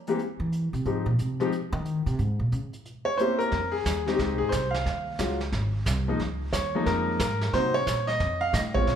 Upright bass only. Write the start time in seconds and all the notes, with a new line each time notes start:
0.40 E3
0.73 C3
0.85 G#2
1.06 A#2
1.20 C3
1.72 D#3
2.06 C3
2.19 G#2
2.39 A#2
2.52 C#3
3.52 F2
3.85 D#2
4.19 C#2
4.30 C2
4.41 G#1
4.52 C2
4.86 D#2
5.19 C#2
5.52 G#1
5.86 C2
6.19 C#2
6.52 D#2
6.86 F2
7.20 G#2
7.53 C3
7.86 A#2
8.20 F2
8.53 A2
8.87 A#2